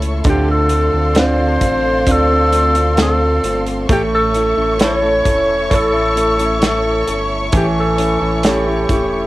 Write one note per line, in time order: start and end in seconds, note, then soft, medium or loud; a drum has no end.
0.00 0.22 C#2 medium
0.00 0.21 A3 medium
0.00 0.25 A3 medium
0.00 0.26 C#4 medium
0.00 0.26 E4 medium
0.00 0.28 E4 soft
0.00 0.26 A4 medium
0.00 0.28 A4 soft
0.00 9.27 A4 medium
0.00 0.22 C#5 medium
0.00 0.27 C#5 medium
0.00 0.22 E5 medium
0.00 0.22 C#6 medium
0.00 closed hi-hat medium
0.24 0.90 D2 loud
0.24 3.85 D3 medium
0.24 0.71 D3 medium
0.24 0.69 A3 medium
0.24 0.70 C4 medium
0.24 0.71 F4 medium
0.24 0.72 A4 medium
0.24 3.86 D5 medium
0.24 3.86 F5 medium
0.24 3.86 C6 medium
0.24 kick loud
0.24 closed hi-hat medium
0.29 0.49 G4 medium
0.51 1.14 A4 loud
0.69 0.94 A3 medium
0.69 0.94 C4 medium
0.69 0.93 F4 medium
0.69 0.92 A4 medium
0.69 closed hi-hat medium
0.93 1.58 D2 medium
0.93 1.16 C4 soft
0.93 1.16 F4 soft
0.93 1.16 A4 medium
1.15 1.39 D3 medium
1.15 1.39 A3 medium
1.15 2.04 C4 soft
1.15 1.40 C4 medium
1.15 2.05 D4 soft
1.15 2.05 F4 medium
1.15 1.39 F4 medium
1.15 1.38 A4 medium
1.15 snare loud
1.15 closed hi-hat medium
1.19 2.13 C5 loud
1.39 1.61 C4 soft
1.39 1.62 F4 soft
1.39 1.62 A4 medium
1.61 2.04 A1 medium
1.61 2.30 A3 medium
1.61 2.30 C4 medium
1.61 2.30 F4 medium
1.61 2.29 A4 medium
1.61 kick medium
1.61 closed hi-hat medium
2.07 3.39 D2 loud
2.07 2.96 C4 medium
2.07 2.96 D4 soft
2.07 2.96 F4 medium
2.07 kick medium
2.07 closed hi-hat medium
2.11 3.00 A4 loud
2.30 2.52 C4 soft
2.30 2.53 F4 soft
2.30 2.53 A4 medium
2.52 2.76 A3 medium
2.52 2.76 C4 medium
2.52 2.75 F4 medium
2.52 2.74 A4 medium
2.52 closed hi-hat medium
2.75 2.98 C4 soft
2.75 2.98 F4 medium
2.75 2.98 A4 medium
2.75 closed hi-hat medium
2.97 3.21 D3 medium
2.97 3.21 A3 medium
2.97 3.21 C4 medium
2.97 3.20 F4 medium
2.97 3.19 A4 medium
2.97 snare loud
2.97 closed hi-hat medium
3.02 3.64 A4 medium
3.20 3.43 C4 soft
3.20 3.44 F4 soft
3.20 3.43 A4 soft
3.43 3.86 G1 medium
3.43 3.89 A3 medium
3.43 3.90 C4 medium
3.43 3.90 F4 medium
3.43 3.89 A4 medium
3.43 closed hi-hat medium
3.66 closed hi-hat medium
3.89 4.53 A1 loud
3.89 4.35 A2 medium
3.89 4.35 E3 medium
3.89 7.49 A3 medium
3.89 4.33 A3 medium
3.89 4.34 C#4 medium
3.89 4.35 E4 medium
3.89 4.02 G4 medium
3.89 4.35 A4 medium
3.89 9.27 C#5 medium
3.89 9.27 E5 medium
3.89 9.27 C#6 medium
3.89 9.27 C#6 loud
3.89 kick loud
3.89 closed hi-hat medium
4.14 4.77 A4 loud
4.34 4.57 A3 medium
4.34 4.57 C#4 medium
4.34 4.56 E4 medium
4.34 4.55 A4 medium
4.34 closed hi-hat medium
4.57 5.22 A1 medium
4.57 4.79 A3 soft
4.57 4.79 C#4 soft
4.57 4.80 E4 medium
4.57 4.80 A4 medium
4.79 5.02 A2 medium
4.79 5.03 E3 medium
4.79 5.03 A3 medium
4.79 5.02 C#4 medium
4.79 5.68 E4 soft
4.79 5.01 E4 medium
4.79 5.69 A4 soft
4.79 5.00 A4 medium
4.79 5.69 C#5 medium
4.79 snare loud
4.79 closed hi-hat loud
4.84 5.76 C#5 loud
5.02 5.23 A3 soft
5.02 5.24 C#4 medium
5.02 5.25 E4 medium
5.02 5.25 A4 medium
5.24 5.68 E1 loud
5.24 5.93 A3 medium
5.24 5.93 C#4 medium
5.24 5.92 E4 medium
5.24 5.92 A4 medium
5.24 kick medium
5.24 closed hi-hat medium
5.70 7.03 A1 loud
5.70 6.59 E4 medium
5.70 6.59 A4 soft
5.70 6.59 C#5 medium
5.70 kick medium
5.70 closed hi-hat medium
5.74 6.64 A4 loud
5.93 6.14 A3 soft
5.93 6.15 C#4 soft
5.93 6.16 E4 soft
5.93 6.16 A4 soft
6.15 6.39 A3 medium
6.15 6.39 C#4 medium
6.15 6.38 E4 medium
6.15 6.37 A4 medium
6.15 closed hi-hat medium
6.38 6.60 A3 soft
6.38 6.60 C#4 soft
6.38 6.61 E4 soft
6.38 6.61 A4 medium
6.38 closed hi-hat medium
6.61 7.07 A2 medium
6.61 7.07 E3 medium
6.61 7.05 A3 medium
6.61 7.06 C#4 medium
6.61 7.07 E4 medium
6.61 7.08 A4 medium
6.61 snare loud
6.61 closed hi-hat medium
6.66 7.28 A4 medium
7.06 7.50 G1 loud
7.06 7.52 A3 medium
7.06 7.52 C#4 medium
7.06 7.52 E4 medium
7.06 7.53 A4 medium
7.06 closed hi-hat medium
7.52 8.17 A1 loud
7.52 7.98 A2 medium
7.52 7.98 E3 medium
7.52 9.27 E3 medium
7.52 7.96 A3 medium
7.52 7.98 C#4 medium
7.52 7.98 E4 medium
7.52 7.99 A4 medium
7.52 kick loud
7.52 closed hi-hat medium
7.57 7.66 G4 medium
7.80 8.49 A4 medium
7.98 8.21 A3 medium
7.98 8.21 C#4 medium
7.98 8.20 E4 medium
7.98 8.20 A4 medium
7.98 closed hi-hat medium
8.21 8.85 A1 loud
8.21 8.43 A3 soft
8.21 8.44 C#4 soft
8.21 8.44 E4 soft
8.21 8.44 A4 soft
8.43 8.67 A2 medium
8.43 8.67 E3 medium
8.43 8.67 A3 medium
8.43 8.67 C#4 medium
8.43 9.27 E4 soft
8.43 8.66 E4 medium
8.43 9.27 A4 soft
8.43 8.65 A4 medium
8.43 9.27 C#5 soft
8.43 snare loud
8.43 closed hi-hat medium
8.48 8.91 G4 medium
8.66 8.88 A3 soft
8.66 8.89 C#4 soft
8.66 8.89 E4 soft
8.66 8.89 A4 medium
8.89 9.27 E1 medium
8.89 9.27 A3 medium
8.89 9.27 C#4 medium
8.89 9.27 E4 medium
8.89 9.27 G4 medium
8.89 9.27 A4 medium
8.89 kick medium
8.89 closed hi-hat medium